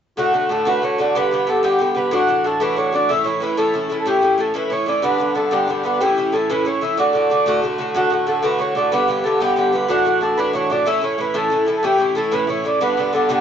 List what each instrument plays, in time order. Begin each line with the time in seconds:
0.17 bouzouki A2 D3 A3 F#4, accordion F#4
0.33 bouzouki A2 D3 A3 F#4
0.49 bouzouki A2 D3 A3 F#4, accordion A4
0.65 bouzouki A2 D3 A3 F#4, accordion B4
0.82 bouzouki A2 D3 A3 F#4, accordion C#5
0.98 bouzouki A2 D3 A3 F#4, accordion D5
1.15 bouzouki G2 D3 B3 G4, accordion B4
1.31 bouzouki G2 D3 B3 G4
1.47 bouzouki G2 D3 B3 G4, accordion A4
1.63 bouzouki G2 D3 B3 G4, accordion G4
1.79 bouzouki G2 D3 B3 G4
1.95 bouzouki G2 D3 B3 G4, accordion B4
2.11 bouzouki A2 E3 D4 F#4, accordion F#4
2.27 bouzouki A2 E3 D4 F#4
2.44 bouzouki A2 E3 D4 F#4, accordion A4
2.60 bouzouki A2 E3 D4 F#4, accordion B4
2.76 bouzouki A2 E3 D4 F#4, accordion C#5
2.93 bouzouki A2 E3 D4 F#4, accordion D5
3.09 bouzouki A2 E3 C#4 E4, accordion E5
3.24 bouzouki A2 E3 C#4 E4, accordion C#5
3.40 bouzouki A2 E3 C#4 E4, accordion B4
3.57 bouzouki A2 E3 C#4 E4, accordion A4
3.74 bouzouki A2 E3 C#4 E4
3.89 bouzouki A2 E3 C#4 E4
4.00 accordion A4
4.06 bouzouki A2 E3 C#4 E4, accordion G4
4.22 bouzouki A2 E3 C#4 E4
4.38 bouzouki A2 E3 C#4 E4, accordion A4
4.54 bouzouki A2 E3 C#4 E4, accordion B4
4.70 bouzouki A2 E3 C#4 E4, accordion C#5
4.86 bouzouki A2 E3 C#4 E4, accordion D5
5.02 bouzouki G2 D3 B3 D4, accordion B4
5.18 bouzouki G2 D3 B3 D4
5.35 bouzouki G2 D3 B3 D4, accordion A4
5.51 bouzouki G2 D3 B3 D4, accordion G4
5.68 bouzouki G2 D3 B3 D4
5.83 bouzouki G2 D3 B3 D4, accordion B4
6.00 bouzouki A2 E3 C#4 E4, accordion G4
6.17 bouzouki A2 E3 C#4 E4
6.32 bouzouki A2 E3 C#4 E4, accordion A4
6.50 bouzouki A2 E3 C#4 E4, accordion B4
6.65 bouzouki A2 E3 C#4 E4, accordion C#5
6.81 bouzouki A2 E3 C#4 E4, accordion E5
6.97 bouzouki A2 D3 A3 F#4, accordion D5
7.13 bouzouki A2 D3 A3 F#4
7.30 bouzouki A2 D3 A3 F#4
7.46 bouzouki A2 D3 A3 F#4
7.62 bouzouki A2 D3 A3 F#4
7.78 bouzouki A2 D3 A3 F#4
7.95 bouzouki A2 D3 A3 F#4, accordion F#4
8.10 bouzouki A2 D3 A3 F#4
8.27 bouzouki A2 D3 A3 F#4, accordion A4
8.43 bouzouki A2 D3 A3 F#4, accordion B4
8.59 bouzouki A2 D3 A3 F#4, accordion C#5
8.75 bouzouki A2 D3 A3 F#4, accordion D5
8.92 bouzouki G2 D3 B3 G4, accordion B4
9.08 bouzouki G2 D3 B3 G4
9.21 bouzouki G2, accordion A4 B4
9.25 bouzouki D3 B3 G4
9.40 bouzouki G2 D3 B3 G4, accordion G4
9.56 bouzouki G2 D3 B3 G4
9.73 bouzouki G2 D3 B3 G4, accordion B4
9.89 bouzouki A2 E3 D4 F#4, accordion F#4
10.05 bouzouki A2 E3 D4 F#4
10.21 bouzouki A2 E3 D4 F#4, accordion A4
10.37 bouzouki A2 E3 D4 F#4, accordion B4
10.53 bouzouki A2 E3 D4 F#4, accordion C#5
10.70 bouzouki A2 E3 D4 F#4, accordion D5
10.86 bouzouki A2 E3 C#4 E4, accordion E5
11.01 bouzouki A2 E3 C#4 E4, accordion C#5
11.18 bouzouki A2 E3 C#4 E4, accordion B4
11.34 bouzouki A2 E3 C#4 E4, accordion A4
11.50 bouzouki A2 E3 C#4 E4
11.66 bouzouki A2 E3 C#4 E4
11.77 accordion A4
11.83 bouzouki A2 E3 C#4 E4, accordion G4
11.98 bouzouki A2 E3 C#4 E4
12.15 bouzouki A2 E3 C#4 E4, accordion A4
12.31 bouzouki A2 E3 C#4 E4, accordion B4
12.47 bouzouki A2 E3 C#4 E4, accordion C#5
12.64 bouzouki A2 E3 C#4 E4, accordion D5
12.81 bouzouki G2 D3 B3 D4, accordion B4
12.97 bouzouki G2 D3 B3 D4
13.13 bouzouki G2 D3 B3 D4, accordion A4
13.29 bouzouki G2 D3 B3 D4, accordion G4